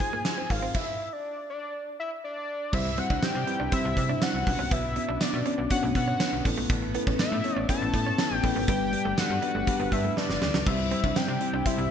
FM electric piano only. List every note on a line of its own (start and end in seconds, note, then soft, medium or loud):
0.00 0.24 D#4 loud
0.00 0.25 F4 medium
0.00 0.25 G#4 medium
0.00 0.26 C5 loud
0.24 0.42 D#4 medium
0.24 0.42 F4 medium
0.24 0.43 G#4 medium
0.24 0.43 C5 loud
0.50 0.67 D#4 medium
0.50 0.67 F4 medium
0.50 0.68 G#4 medium
0.50 0.68 A#4 medium
2.72 2.90 G3 medium
2.72 2.90 C4 medium
2.72 2.90 E4 medium
2.72 2.91 G4 medium
2.72 2.91 C5 loud
2.97 3.15 G3 medium
2.97 3.15 C4 medium
2.97 3.15 E4 medium
2.97 3.15 G4 medium
2.97 3.16 C5 medium
3.22 3.40 G3 medium
3.22 3.40 C4 medium
3.22 3.40 E4 medium
3.22 3.40 G4 medium
3.22 3.40 C5 medium
3.47 3.64 G3 medium
3.47 3.65 C4 medium
3.47 3.65 E4 medium
3.47 3.65 G4 medium
3.47 3.65 B4 medium
3.72 3.89 G3 loud
3.72 3.89 C4 medium
3.72 3.90 E4 medium
3.72 3.90 G4 loud
3.72 3.90 C5 loud
3.96 4.14 G3 medium
3.96 4.14 C4 medium
3.96 4.14 E4 medium
3.96 4.15 G4 medium
3.96 4.15 C5 medium
4.21 4.39 G3 medium
4.21 4.39 C4 medium
4.21 4.39 E4 medium
4.21 4.39 G4 medium
4.21 4.40 C5 medium
4.46 4.86 B3 medium
4.46 4.86 C#4 medium
4.46 4.86 D4 medium
4.46 4.86 F#4 medium
4.46 4.87 B4 medium
4.96 5.13 B3 medium
4.96 5.13 C#4 medium
4.96 5.14 D4 medium
4.96 5.14 F#4 medium
4.96 5.14 B4 medium
5.20 5.38 B3 medium
5.20 5.38 C#4 medium
5.20 5.38 D4 medium
5.20 5.39 F#4 medium
5.20 5.39 B4 medium
5.45 5.63 B3 medium
5.45 5.63 C#4 medium
5.45 5.63 D4 medium
5.45 5.63 F#4 medium
5.45 5.64 D5 medium
5.70 5.88 B3 loud
5.70 5.88 C#4 loud
5.70 5.88 D4 loud
5.70 5.88 F#4 loud
5.70 5.88 C#5 loud
5.95 6.13 B3 medium
5.95 6.13 C#4 medium
5.95 6.13 D4 medium
5.95 6.13 F#4 medium
5.95 6.13 B4 medium
6.20 6.37 B3 medium
6.20 6.38 C#4 medium
6.20 6.38 D4 medium
6.20 6.38 F#4 medium
6.20 6.38 B4 medium
6.44 6.84 B3 medium
6.44 6.84 C#4 medium
6.44 6.85 E4 medium
6.44 6.85 A4 medium
6.44 6.85 B4 medium
6.94 7.12 B3 medium
6.94 7.12 C#4 medium
6.94 7.12 E4 medium
6.94 7.12 A4 medium
6.94 7.12 B4 loud
7.19 7.37 B3 medium
7.19 7.37 C#4 medium
7.19 7.37 E4 medium
7.19 7.37 A4 medium
7.19 7.37 B4 medium
7.44 7.61 B3 medium
7.44 7.61 C#4 medium
7.44 7.62 E4 medium
7.44 7.62 A4 medium
7.44 7.62 C#5 medium
7.68 7.86 B3 loud
7.68 7.86 C#4 loud
7.68 7.86 E4 medium
7.68 7.87 A4 loud
7.68 7.87 B4 loud
7.93 8.11 B3 medium
7.93 8.11 C#4 medium
7.93 8.11 E4 medium
7.93 8.11 A4 medium
7.93 8.12 B4 medium
8.18 8.36 B3 medium
8.18 8.36 C#4 medium
8.18 8.36 E4 medium
8.18 8.36 A4 medium
8.18 8.36 B4 medium
8.43 8.60 B3 medium
8.43 8.61 C#4 medium
8.43 8.61 E4 medium
8.43 8.61 A4 medium
8.43 8.61 B4 loud
8.68 8.85 G3 loud
8.68 8.85 B3 medium
8.68 8.86 D4 medium
8.68 8.86 G4 medium
8.68 8.86 B4 loud
8.92 9.10 G3 medium
8.92 9.10 B3 medium
8.92 9.10 D4 medium
8.92 9.10 G4 medium
8.92 9.11 B4 medium
9.17 9.35 G3 medium
9.17 9.35 B3 medium
9.17 9.35 D4 medium
9.17 9.35 G4 medium
9.17 9.35 A4 medium
9.42 9.60 G3 medium
9.42 9.60 B3 medium
9.42 9.60 D4 medium
9.42 9.60 G4 medium
9.42 9.60 B4 medium
9.67 9.84 G3 loud
9.67 9.85 B3 medium
9.67 9.85 D4 loud
9.67 9.85 G4 loud
9.67 9.85 B4 loud
9.92 10.09 G3 medium
9.92 10.09 B3 medium
9.92 10.10 D4 medium
9.92 10.10 G4 medium
9.92 10.10 B4 medium
10.16 10.34 G3 medium
10.16 10.34 B3 medium
10.16 10.34 D4 medium
10.16 10.35 G4 medium
10.16 10.35 B4 medium
10.41 10.59 G3 medium
10.41 10.59 B3 medium
10.41 10.59 D4 medium
10.41 10.59 G4 medium
10.66 10.84 G3 medium
10.66 10.84 C4 medium
10.66 10.84 E4 medium
10.66 10.84 G4 medium
10.66 10.84 C5 loud
10.91 11.08 G3 medium
10.91 11.09 C4 medium
10.91 11.09 E4 medium
10.91 11.09 G4 medium
10.91 11.09 C5 medium
11.15 11.33 G3 medium
11.15 11.33 C4 medium
11.15 11.33 E4 medium
11.15 11.34 G4 medium
11.15 11.34 C5 medium
11.40 11.58 G3 medium
11.40 11.58 C4 medium
11.40 11.58 E4 medium
11.40 11.59 G4 medium
11.40 11.59 C5 medium
11.65 11.83 G3 loud
11.65 11.83 C4 loud
11.65 11.83 E4 loud
11.65 11.83 G4 loud
11.65 11.83 C5 loud